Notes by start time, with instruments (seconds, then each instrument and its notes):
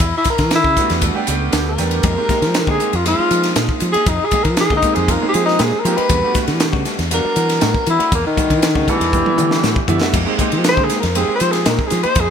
Already playing: tenor saxophone E4
0.00 fretless electric bass E2, kick
0.17 tenor saxophone E4
0.24 muted fretless electric bass stroke, kick, snare, hi-hat pedal, ride
0.30 tenor saxophone A#4
0.38 fretless electric bass E3, kick, snare, ride
0.51 snare, hi-hat pedal, ride
0.55 tenor saxophone E4
0.64 fretless electric bass C#3, kick
0.77 grand piano G3 A3 B3 D4 F#4, kick, hi-hat pedal, ride
0.90 fretless electric bass E2, snare, ride
1.01 grand piano G3 A3 B3 D4 F#4, kick, hi-hat pedal, ride
1.14 grand piano G3 A3 B3 D4 G4
1.27 fretless electric bass C#2, grand piano G3 A3 B3 D4 G4, hi-hat pedal, ride
1.53 fretless electric bass D2, snare, hi-hat pedal, ride
1.69 tenor saxophone A#4
1.78 fretless electric bass E2, grand piano G3 A3 B3 D4 G4, snare, hi-hat pedal, ride
1.91 ride
2.03 fretless electric bass F2, clean electric guitar G#3 A#3 D#4 G4, kick, hi-hat pedal, ride
2.17 grand piano G#3 A#3 C4 D#4 G4, muted clean electric guitar stroke
2.29 clean electric guitar G#3 A#3 D#4 G4, muted fretless electric bass stroke, kick, snare, hi-hat pedal, ride
2.42 fretless electric bass F3, muted clean electric guitar stroke, snare, ride
2.54 snare, hi-hat pedal, ride
2.67 fretless electric bass D3, clean electric guitar G#3 A#3 D#4 G4, tenor saxophone G#4, kick
2.80 clean electric guitar G#3 A#3 D#4 G4, hi-hat pedal, ride
2.93 fretless electric bass F2, tenor saxophone F4, muted clean electric guitar stroke, ride
3.04 grand piano G#3 A#3 C4 D#4 G#4, tenor saxophone F4, muted clean electric guitar stroke, hi-hat pedal, ride
3.19 muted fretless electric bass stroke, muted clean electric guitar stroke
3.31 fretless electric bass F3, muted clean electric guitar stroke, hi-hat pedal, ride
3.44 snare, ride
3.56 fretless electric bass A#2, clean electric guitar G#3 A#3 D#4 G4, snare, hi-hat pedal, ride
3.69 muted fretless electric bass stroke, muted clean electric guitar stroke, kick
3.80 fretless electric bass F3, muted clean electric guitar stroke, hi-hat pedal, ride
3.92 clean electric guitar A#3 D#4 G4, tenor saxophone G#4, muted fretless electric bass stroke, ride
4.06 fretless electric bass F2, tenor saxophone D#4, kick, hi-hat pedal, ride
4.20 muted clean electric guitar stroke
4.25 tenor saxophone G#4
4.31 clean electric guitar G#3 A#3 D#4 G4, muted fretless electric bass stroke, kick, hi-hat pedal, ride
4.43 fretless electric bass F3, tenor saxophone A#4, muted clean electric guitar stroke, kick, ride
4.57 tenor saxophone G#4, snare, hi-hat pedal, ride
4.70 fretless electric bass D3, clean electric guitar G#3 A#3 D#4 G4, kick
4.77 tenor saxophone D#4
4.82 grand piano G#3 A#3 C4 D#4 G4, clean electric guitar G#3 A#3 D#4 G4, kick, hi-hat pedal, ride
4.95 fretless electric bass F2, tenor saxophone G#4, muted clean electric guitar stroke, ride
5.08 grand piano G#3 A#3 C4 D#4 F4, tenor saxophone A#4, muted clean electric guitar stroke, kick, hi-hat pedal, ride
5.21 grand piano G#3 A#3 C4 D#4 G#4, muted clean electric guitar stroke
5.29 tenor saxophone G#4
5.34 fretless electric bass F3, grand piano G#3 A#3 C4 D#4 G4, muted clean electric guitar stroke, hi-hat pedal, ride
5.46 tenor saxophone D#4, snare
5.59 fretless electric bass A#2, clean electric guitar G#3 A#3 D#4 G4, tenor saxophone G#4, snare, hi-hat pedal, ride
5.72 muted clean electric guitar stroke, muted fretless electric bass stroke
5.79 tenor saxophone A#4
5.84 fretless electric bass F3, grand piano G#3 A#3 C4 D#4 G4, muted clean electric guitar stroke, hi-hat pedal, ride
5.97 clean electric guitar A#3 D#4 G4, tenor saxophone B4, muted fretless electric bass stroke, ride
6.09 fretless electric bass E2, clean electric guitar G3 A3 D4 F#4, kick, hi-hat pedal, ride
6.22 grand piano G3 A3 B3 D4 F#4, muted clean electric guitar stroke
6.34 clean electric guitar G3 A3 D4 F#4, muted fretless electric bass stroke, kick, snare, hi-hat pedal, ride
6.47 fretless electric bass E3, muted clean electric guitar stroke, snare, ride
6.60 snare, hi-hat pedal, ride
6.73 fretless electric bass C#3, clean electric guitar G3 A3 D4 F#4, kick
6.85 clean electric guitar G3 A3 D4 F#4, snare, hi-hat pedal, ride
6.99 fretless electric bass E2, muted clean electric guitar stroke, snare, ride
7.11 grand piano F#3 G3 B3 D4 F#4, tenor saxophone A#4, muted clean electric guitar stroke, hi-hat pedal, ride
7.24 muted clean electric guitar stroke, muted fretless electric bass stroke
7.36 fretless electric bass E3, muted clean electric guitar stroke, hi-hat pedal, ride
7.49 snare, ride
7.61 fretless electric bass A2, clean electric guitar G3 A3 D4 F#4, snare, hi-hat pedal, ride
7.74 muted fretless electric bass stroke, muted clean electric guitar stroke, kick
7.86 fretless electric bass E3, muted clean electric guitar stroke, hi-hat pedal, ride
7.90 tenor saxophone E4
7.99 clean electric guitar A3 D4 F#4, muted fretless electric bass stroke, ride
8.12 fretless electric bass E2, tenor saxophone A#3, kick, hi-hat pedal, ride
8.25 tenor saxophone D#3, muted clean electric guitar stroke
8.37 clean electric guitar G3 A3 D4 F#4, kick, hi-hat pedal, ride
8.50 fretless electric bass E3, muted clean electric guitar stroke, kick, ride
8.62 snare, hi-hat pedal, ride
8.75 fretless electric bass C#3, clean electric guitar G3 A3 D4 F#4, kick
8.87 tenor saxophone E3, clean electric guitar G3 A3 D4 F#4, grand piano G3 A3 B3 D4 A4, kick, hi-hat pedal, ride
9.00 fretless electric bass E2, muted clean electric guitar stroke, ride
9.13 grand piano G3 A3 B3 D4 G4, muted clean electric guitar stroke, kick, hi-hat pedal, high tom
9.26 grand piano G3 A3 B3 D4 E4, muted clean electric guitar stroke, muted fretless electric bass stroke, high tom
9.37 fretless electric bass E3, grand piano G3 A3 B3 D4 G4, muted clean electric guitar stroke, hi-hat pedal, mid tom
9.51 snare
9.63 fretless electric bass A2, clean electric guitar G3 A3 D4 F#4, snare, hi-hat pedal
9.76 muted fretless electric bass stroke, muted clean electric guitar stroke, kick
9.87 fretless electric bass E3, grand piano G3 A3 B3 D4 E4, muted clean electric guitar stroke, floor tom, hi-hat pedal
10.01 clean electric guitar A3 D4 F#4, muted fretless electric bass stroke, snare
10.13 fretless electric bass F2, clean electric guitar G#3 A#3 D#4 G4, kick, hi-hat pedal, crash, ride
10.26 grand piano G#3 A#3 C4 D#4 G4, muted clean electric guitar stroke
10.39 clean electric guitar G#3 A#3 D#4 G4, muted fretless electric bass stroke, kick, hi-hat pedal, ride
10.52 fretless electric bass F3, ride
10.64 snare, hi-hat pedal, ride
10.68 tenor saxophone C5
10.77 fretless electric bass D3, clean electric guitar G#3 A#3 D#4 G4, kick
10.84 tenor saxophone G#4
10.90 clean electric guitar G#3 A#3 D#4 G4, snare, hi-hat pedal, ride
11.00 fretless electric bass F2, tenor saxophone A#4, muted clean electric guitar stroke, snare, ride
11.15 grand piano G#3 A#3 C4 D#4 G4, tenor saxophone G#4, muted clean electric guitar stroke, hi-hat pedal, ride
11.28 muted fretless electric bass stroke, muted clean electric guitar stroke
11.35 tenor saxophone C5
11.40 fretless electric bass F3, muted clean electric guitar stroke, hi-hat pedal, ride
11.52 tenor saxophone G#4, snare, ride
11.66 fretless electric bass A#2, clean electric guitar G#3 A#3 D#4 G4, tenor saxophone A#4, snare, hi-hat pedal, ride
11.79 muted fretless electric bass stroke, muted clean electric guitar stroke, kick
11.87 tenor saxophone G#4, hi-hat pedal, ride
11.91 fretless electric bass F3, muted clean electric guitar stroke, snare
12.03 clean electric guitar A#3 D#4 G4, tenor saxophone C5, muted fretless electric bass stroke, ride
12.15 fretless electric bass F2, kick, hi-hat pedal, ride
12.21 tenor saxophone G#4